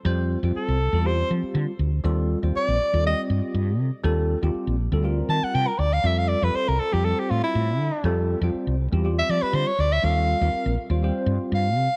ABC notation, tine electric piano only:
X:1
M:4/4
L:1/16
Q:1/4=120
K:Fmix
V:1 name="Tine electric piano"
[G,CFc]3 [G,CFc]3 z [G,CFA] [G,CFG]4- [G,CFG] z [FA] z | [G,CFA]3 [G,CFc]3 [FG] [G,CFA] [G,CFG]4- [G,CFG] z [FA] z | [G,CFA]3 [G,CFG]3 [FA] [G,CFA] [G,CFB]4- [G,CFB] z [FB] z | [G,CFA]3 [G,CFA]3 A [G,CFA] [G,CFc]4- [G,CFc] z [FA] z |
[G,CFA]3 [G,CFc]3 [Fc] [G,CFG] [G,CFG]4- [G,CFG] z [FA] z | [G,CFA]3 [G,CFB]3 [FA] [G,CFc] [G,CFc]4- [G,CFc] z [FB] z |]